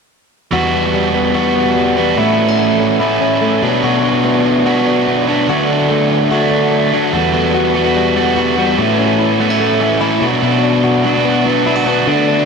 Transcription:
0.51 clean electric guitar E2 F#4, overdriven electric guitar E3 G3 B3 F#4
0.73 clean electric guitar B3
0.94 clean electric guitar G3
1.14 clean electric guitar B3
1.34 overdriven electric guitar E3 G3 B3 F#4, clean electric guitar F#4
1.56 clean electric guitar B3
1.76 clean electric guitar G3
1.97 overdriven electric guitar G3 B3 F#4, clean electric guitar B3
2.17 overdriven electric guitar A2 E3 A3 C#4 E4, clean electric guitar A2 E4
2.38 clean electric guitar B3
2.48 clean electric guitar C#4
2.59 clean electric guitar A3
2.80 clean electric guitar C#4
3.00 overdriven electric guitar E3 A3 C#4 E4, clean electric guitar E4
3.21 clean electric guitar C#4
3.42 clean electric guitar A3
3.62 clean electric guitar B2, overdriven electric guitar F#3 B3 D4
3.83 overdriven electric guitar B2 F#3 B3 D4, clean electric guitar B2 F#4
4.04 clean electric guitar D4
4.25 clean electric guitar B3
4.46 clean electric guitar D4
4.65 overdriven electric guitar B2 F#3 B3 D4, clean electric guitar F#4
4.87 clean electric guitar D4
5.07 clean electric guitar B3
5.28 overdriven electric guitar F#3 B3 D4, clean electric guitar D4
5.48 overdriven electric guitar D3 F#3 A3 D4, clean electric guitar D3 F#4
5.70 clean electric guitar D4
5.90 clean electric guitar A3
6.11 clean electric guitar D4
6.31 overdriven electric guitar D3 F#3 A3 D4, clean electric guitar F#4
6.51 clean electric guitar D4
6.72 clean electric guitar A3
6.92 overdriven electric guitar F#3 A3 D4, clean electric guitar D4
7.13 clean electric guitar E2, overdriven electric guitar E3 G3 B3 F#4
7.34 clean electric guitar B3
7.54 clean electric guitar F#4
7.74 overdriven electric guitar E3 G3 B3 F#4, clean electric guitar B3
7.84 overdriven electric guitar G3 B3 F#4
7.96 clean electric guitar G3
8.16 overdriven electric guitar E3 G3 B3 F#4, clean electric guitar B3
8.36 overdriven electric guitar E3 G3 B3 F#4, clean electric guitar F#4
8.57 overdriven electric guitar E3 G3 B3 F#4, clean electric guitar G3
8.77 overdriven electric guitar A2 E3 A3 C#4 E4, clean electric guitar A2
8.99 clean electric guitar C#4
9.19 clean electric guitar E4
9.39 overdriven electric guitar E3 A3 C#4 E4, clean electric guitar B3
9.49 overdriven electric guitar A3 C#4 E4, clean electric guitar C#4
9.60 clean electric guitar A3
9.80 overdriven electric guitar E3 A3 C#4 E4, clean electric guitar C#4
10.01 overdriven electric guitar E3 A3 C#4 E4, clean electric guitar E4
10.21 clean electric guitar B2, overdriven electric guitar F#3 B3 D4 F#4
10.41 overdriven electric guitar B2 F#3 B3 D4 F#4, clean electric guitar B2
10.63 clean electric guitar D4
10.84 clean electric guitar F#4
11.04 overdriven electric guitar F#3 B3 D4 F#4, clean electric guitar D4
11.14 overdriven electric guitar B3 D4 F#4
11.25 clean electric guitar B3
11.45 overdriven electric guitar F#3 B3 D4 F#4, clean electric guitar D4
11.65 overdriven electric guitar F#3 B3 D4 F#4, clean electric guitar E4
11.76 clean electric guitar F#4
11.86 overdriven electric guitar F#3 B3 D4 F#4, clean electric guitar B3
12.07 overdriven electric guitar D3 A3 D4 F#4, clean electric guitar D3
12.28 clean electric guitar D4

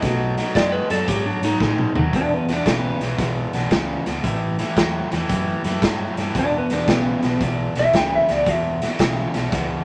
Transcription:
Already playing: clean electric guitar D#5
0.02 fingered electric bass B1, overdriven electric guitar B2 F#3, upright piano A3 B3 D#4 F#4, kick, snare, closed hi-hat
0.38 overdriven electric guitar B2 F#3, snare, closed hi-hat
0.55 fingered electric bass F#2, overdriven electric guitar B2 G#3, electric slide guitar D5, kick, snare, closed hi-hat
0.72 electric slide guitar B4
0.90 fingered electric bass F#2, overdriven electric guitar B2 F#3, electric slide guitar A4, snare, closed hi-hat
0.98 clean electric guitar C#5
1.08 fingered electric bass G#2, overdriven electric guitar B2 F#3, electric slide guitar G4, kick, closed hi-hat
1.26 electric slide guitar D4
1.42 fingered electric bass G#2, overdriven electric guitar B2 F#3, electric slide guitar D#4, snare, closed hi-hat
1.60 fingered electric bass A2, overdriven electric guitar B2 G#3, kick, snare
1.78 mid tom
1.95 fingered electric bass D#2, overdriven electric guitar B2 F#3, floor tom
2.13 overdriven electric guitar E2 B2, clean electric guitar D4, kick, closed hi-hat
2.34 clean electric guitar B3
2.48 fingered electric bass E1, overdriven electric guitar E2 B2, snare, closed hi-hat
2.52 clean electric guitar D4
2.66 fingered electric bass B1, overdriven electric guitar E2 C#3, clean electric guitar B3, kick, snare, closed hi-hat
3.01 fingered electric bass B1, overdriven electric guitar E2 B2, snare, closed hi-hat
3.18 fingered electric bass B1, overdriven electric guitar E2 B2, kick, snare, closed hi-hat
3.53 fingered electric bass B1, overdriven electric guitar E2 B2, snare, closed hi-hat
3.71 fingered electric bass C#2, overdriven electric guitar E2 C#3, kick, snare, closed hi-hat
4.06 fingered electric bass C#2, overdriven electric guitar E2 B2, snare, closed hi-hat
4.24 fingered electric bass A1, overdriven electric guitar A2 E3, kick, closed hi-hat
4.59 overdriven electric guitar A2 E3, snare, closed hi-hat
4.76 fingered electric bass E2, overdriven electric guitar A2 F#3, kick, snare, closed hi-hat
5.11 fingered electric bass E2, overdriven electric guitar A2 E3, snare, closed hi-hat
5.29 fingered electric bass F#2, overdriven electric guitar A2 E3, kick, closed hi-hat
5.64 fingered electric bass F#2, overdriven electric guitar A2 E3, snare, closed hi-hat
5.82 fingered electric bass G2, overdriven electric guitar A2 F#3, kick, snare, closed hi-hat
6.17 fingered electric bass G2, overdriven electric guitar A2 E3, snare, closed hi-hat
6.35 fingered electric bass E1, overdriven electric guitar E2 B2, kick, closed hi-hat
6.39 clean electric guitar D4
6.58 clean electric guitar B3
6.70 fingered electric bass E1, overdriven electric guitar E2 B2, clean electric guitar D4, snare, closed hi-hat
6.87 fingered electric bass B1, overdriven electric guitar E2 C#3, clean electric guitar B3, kick, snare, closed hi-hat
7.22 fingered electric bass B1, overdriven electric guitar E2 B2, snare, closed hi-hat
7.41 fingered electric bass B1, overdriven electric guitar E2 B2, kick, closed hi-hat
7.75 fingered electric bass B1, overdriven electric guitar E2 B2, snare, closed hi-hat
7.79 clean electric guitar E5
7.93 fingered electric bass C#2, overdriven electric guitar E2 C#3, clean electric guitar G5, kick, snare, closed hi-hat
8.15 clean electric guitar E5
8.29 fingered electric bass C#2, overdriven electric guitar E2 B2, clean electric guitar D5, snare, closed hi-hat
8.46 fingered electric bass E1, overdriven electric guitar E2 B2, clean electric guitar E5, kick, closed hi-hat
8.82 overdriven electric guitar E2 B2, snare, closed hi-hat
8.99 fingered electric bass B1, overdriven electric guitar E2 C#3, kick, snare, closed hi-hat
9.34 fingered electric bass B1, overdriven electric guitar E2 B2, snare, closed hi-hat
9.52 fingered electric bass C#2, overdriven electric guitar E2 B2, kick, snare, closed hi-hat

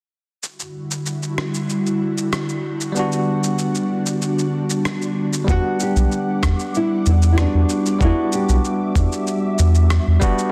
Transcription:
0.43 ambient pad D3 G3 E4 F#4, shaker
0.60 shaker
0.91 shaker
1.06 shaker
1.23 shaker
1.38 cross-stick
1.54 shaker
1.70 shaker
1.87 shaker
2.18 shaker
2.33 cross-stick, shaker
2.49 shaker
2.81 shaker
2.92 tine electric piano G3 B3, shaker
2.96 ambient pad D4, tine electric piano D4 F#4
3.12 shaker
3.44 shaker
3.59 shaker
3.75 shaker
4.06 shaker
4.22 shaker
4.39 shaker
4.70 shaker
4.85 cross-stick, shaker
5.02 shaker
5.33 shaker
5.44 sub bass E2, tine electric piano G3 B3, ambient pad G3 D6, kick
5.48 tine electric piano D4 F#5, nylon-string guitar F#4, ambient pad F#5, shaker
5.80 nylon-string guitar G4, shaker
5.96 sub bass B1, shaker
6.12 shaker
6.43 sub bass E2, kick, cross-stick, shaker
6.59 shaker
6.75 nylon-string guitar E4, shaker
7.06 sub bass E2, nylon-string guitar D4, shaker
7.22 shaker
7.32 tine electric piano G3, nylon-string guitar E4
7.37 tine electric piano B3 D4 F#4, cross-stick, shaker
7.41 nylon-string guitar D4
7.54 sub bass E2
7.69 shaker
7.86 shaker
7.99 sub bass E2, tine electric piano G3 B3 D4 F#4, ambient pad E5, kick, shaker
8.04 nylon-string guitar E4
8.33 nylon-string guitar G4, shaker
8.49 sub bass B1, shaker
8.65 shaker
8.95 sub bass E2, kick, shaker
9.12 shaker
9.27 shaker
9.59 sub bass E2, shaker
9.75 shaker
9.90 cross-stick, shaker
10.07 sub bass E2
10.20 tine electric piano G3 B3 D4 F#4, kick, shaker
10.39 shaker

